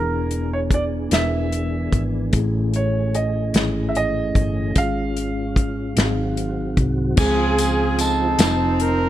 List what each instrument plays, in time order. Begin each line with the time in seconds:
Already playing: fingered electric bass E1, tine electric piano E3 B3 D4 E4 G#4, tonewheel organ E3 B3 D4 G#4, grand piano A#4
0.31 closed hi-hat
0.53 grand piano C#5
0.71 grand piano D5, kick, closed hi-hat
1.09 fingered electric bass E1, tine electric piano B3 D4 E4 A#4, snare, closed hi-hat
1.14 grand piano E5
1.18 tine electric piano B4
1.52 closed hi-hat
1.92 fingered electric bass G#1, kick, closed hi-hat
2.32 fingered electric bass A1, tine electric piano A2 A3 C4 E4 G#4, tonewheel organ A3 C#4, kick, closed hi-hat
2.39 tine electric piano C#4
2.74 grand piano C#5, closed hi-hat
3.15 grand piano D#5, closed hi-hat
3.53 fingered electric bass G#1, tine electric piano A3 C#4 E4 G#4, snare, closed hi-hat
3.89 grand piano E5
3.95 grand piano D#5, closed hi-hat
4.35 fingered electric bass G1, kick, closed hi-hat
4.73 fingered electric bass G#1, tine electric piano G#2 G#3 C#4, tonewheel organ F4, kick, closed hi-hat
4.78 tine electric piano F4 G#4, grand piano F5
5.17 closed hi-hat
5.56 kick, closed hi-hat
5.95 fingered electric bass G#1, tine electric piano G#2 C4 D#4 F#4 G4, tonewheel organ D#3 F#3 C4 F#4, snare, closed hi-hat
6.05 tine electric piano G#4
6.37 closed hi-hat
6.77 fingered electric bass C2, kick, closed hi-hat
7.16 fingered electric bass C#2, tonewheel organ C#3 F3 C4 F4, tine electric piano C#3 G#3 C4 F4 G#4, saxophone section C4 F4 G#4, kick, crash, tambourine
7.58 closed hi-hat, tambourine
7.99 saxophone section C4 D#4 A4, closed hi-hat, tambourine
8.38 fingered electric bass F1, tonewheel organ F3 D#4 C5, tine electric piano C4 D#4 F4 A5, snare, closed hi-hat, tambourine
8.80 saxophone section A#4, closed hi-hat